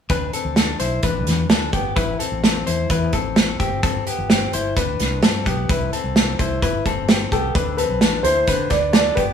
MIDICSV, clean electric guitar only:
0, 0, Header, 1, 2, 480
1, 0, Start_track
1, 0, Tempo, 465116
1, 103, Time_signature, 4, 2, 24, 8
1, 9631, End_track
2, 0, Start_track
2, 0, Title_t, "Clean electric guitar"
2, 0, Program_c, 0, 27
2, 107, Note_on_c, 0, 71, 80
2, 113, Note_on_c, 0, 62, 65
2, 342, Note_off_c, 0, 71, 0
2, 347, Note_on_c, 0, 69, 62
2, 349, Note_off_c, 0, 62, 0
2, 355, Note_on_c, 0, 60, 42
2, 575, Note_off_c, 0, 69, 0
2, 587, Note_on_c, 0, 69, 59
2, 591, Note_off_c, 0, 60, 0
2, 597, Note_on_c, 0, 62, 47
2, 818, Note_off_c, 0, 69, 0
2, 822, Note_on_c, 0, 72, 63
2, 831, Note_on_c, 0, 64, 48
2, 833, Note_off_c, 0, 62, 0
2, 1063, Note_off_c, 0, 72, 0
2, 1067, Note_on_c, 0, 71, 60
2, 1070, Note_off_c, 0, 64, 0
2, 1073, Note_on_c, 0, 62, 42
2, 1521, Note_off_c, 0, 71, 0
2, 1524, Note_off_c, 0, 62, 0
2, 1549, Note_on_c, 0, 69, 68
2, 1556, Note_on_c, 0, 62, 55
2, 1783, Note_off_c, 0, 69, 0
2, 1788, Note_on_c, 0, 67, 59
2, 1789, Note_off_c, 0, 62, 0
2, 1793, Note_on_c, 0, 59, 45
2, 2018, Note_off_c, 0, 67, 0
2, 2022, Note_on_c, 0, 71, 73
2, 2025, Note_off_c, 0, 59, 0
2, 2029, Note_on_c, 0, 64, 64
2, 2260, Note_off_c, 0, 71, 0
2, 2264, Note_on_c, 0, 69, 54
2, 2271, Note_off_c, 0, 64, 0
2, 2273, Note_on_c, 0, 60, 46
2, 2501, Note_off_c, 0, 69, 0
2, 2510, Note_off_c, 0, 60, 0
2, 2513, Note_on_c, 0, 69, 67
2, 2523, Note_on_c, 0, 60, 54
2, 2747, Note_off_c, 0, 69, 0
2, 2751, Note_on_c, 0, 72, 67
2, 2759, Note_off_c, 0, 60, 0
2, 2759, Note_on_c, 0, 64, 47
2, 2993, Note_off_c, 0, 72, 0
2, 2997, Note_off_c, 0, 64, 0
2, 3001, Note_on_c, 0, 71, 71
2, 3010, Note_on_c, 0, 64, 56
2, 3237, Note_off_c, 0, 71, 0
2, 3241, Note_on_c, 0, 69, 72
2, 3243, Note_off_c, 0, 64, 0
2, 3246, Note_on_c, 0, 60, 58
2, 3690, Note_off_c, 0, 69, 0
2, 3693, Note_off_c, 0, 60, 0
2, 3711, Note_on_c, 0, 67, 63
2, 3721, Note_on_c, 0, 60, 49
2, 3947, Note_off_c, 0, 60, 0
2, 3949, Note_off_c, 0, 67, 0
2, 3953, Note_on_c, 0, 69, 90
2, 3959, Note_on_c, 0, 60, 69
2, 4195, Note_off_c, 0, 69, 0
2, 4198, Note_off_c, 0, 60, 0
2, 4199, Note_on_c, 0, 67, 59
2, 4205, Note_on_c, 0, 59, 49
2, 4424, Note_off_c, 0, 67, 0
2, 4437, Note_on_c, 0, 67, 66
2, 4441, Note_off_c, 0, 59, 0
2, 4445, Note_on_c, 0, 60, 46
2, 4677, Note_off_c, 0, 67, 0
2, 4681, Note_off_c, 0, 60, 0
2, 4681, Note_on_c, 0, 72, 65
2, 4688, Note_on_c, 0, 64, 49
2, 4916, Note_off_c, 0, 72, 0
2, 4920, Note_on_c, 0, 71, 60
2, 4922, Note_off_c, 0, 64, 0
2, 4927, Note_on_c, 0, 62, 47
2, 5369, Note_off_c, 0, 71, 0
2, 5373, Note_off_c, 0, 62, 0
2, 5401, Note_on_c, 0, 69, 72
2, 5408, Note_on_c, 0, 60, 57
2, 5638, Note_off_c, 0, 69, 0
2, 5642, Note_off_c, 0, 60, 0
2, 5643, Note_on_c, 0, 67, 68
2, 5654, Note_on_c, 0, 59, 50
2, 5879, Note_off_c, 0, 67, 0
2, 5885, Note_off_c, 0, 59, 0
2, 5885, Note_on_c, 0, 71, 84
2, 5894, Note_on_c, 0, 64, 58
2, 6114, Note_off_c, 0, 71, 0
2, 6118, Note_on_c, 0, 69, 58
2, 6124, Note_off_c, 0, 64, 0
2, 6127, Note_on_c, 0, 60, 45
2, 6352, Note_off_c, 0, 69, 0
2, 6358, Note_off_c, 0, 60, 0
2, 6364, Note_on_c, 0, 69, 68
2, 6370, Note_on_c, 0, 60, 49
2, 6594, Note_off_c, 0, 69, 0
2, 6598, Note_on_c, 0, 72, 59
2, 6602, Note_off_c, 0, 60, 0
2, 6608, Note_on_c, 0, 64, 47
2, 6834, Note_off_c, 0, 72, 0
2, 6837, Note_off_c, 0, 64, 0
2, 6838, Note_on_c, 0, 71, 64
2, 6850, Note_on_c, 0, 64, 56
2, 7075, Note_off_c, 0, 71, 0
2, 7080, Note_off_c, 0, 64, 0
2, 7083, Note_on_c, 0, 69, 72
2, 7091, Note_on_c, 0, 60, 53
2, 7527, Note_off_c, 0, 69, 0
2, 7532, Note_off_c, 0, 60, 0
2, 7555, Note_on_c, 0, 67, 59
2, 7566, Note_on_c, 0, 59, 48
2, 7791, Note_off_c, 0, 67, 0
2, 7795, Note_on_c, 0, 71, 80
2, 7797, Note_off_c, 0, 59, 0
2, 7805, Note_on_c, 0, 62, 64
2, 8028, Note_off_c, 0, 71, 0
2, 8032, Note_on_c, 0, 69, 59
2, 8036, Note_off_c, 0, 62, 0
2, 8043, Note_on_c, 0, 60, 45
2, 8264, Note_off_c, 0, 69, 0
2, 8275, Note_off_c, 0, 60, 0
2, 8276, Note_on_c, 0, 69, 57
2, 8282, Note_on_c, 0, 62, 51
2, 8506, Note_off_c, 0, 69, 0
2, 8510, Note_on_c, 0, 72, 60
2, 8514, Note_off_c, 0, 62, 0
2, 8515, Note_on_c, 0, 64, 49
2, 8748, Note_off_c, 0, 72, 0
2, 8750, Note_off_c, 0, 64, 0
2, 8754, Note_on_c, 0, 71, 67
2, 8764, Note_on_c, 0, 62, 46
2, 9199, Note_off_c, 0, 71, 0
2, 9205, Note_off_c, 0, 62, 0
2, 9232, Note_on_c, 0, 69, 70
2, 9241, Note_on_c, 0, 62, 50
2, 9458, Note_off_c, 0, 69, 0
2, 9462, Note_on_c, 0, 67, 65
2, 9469, Note_off_c, 0, 62, 0
2, 9473, Note_on_c, 0, 59, 46
2, 9631, Note_off_c, 0, 59, 0
2, 9631, Note_off_c, 0, 67, 0
2, 9631, End_track
0, 0, End_of_file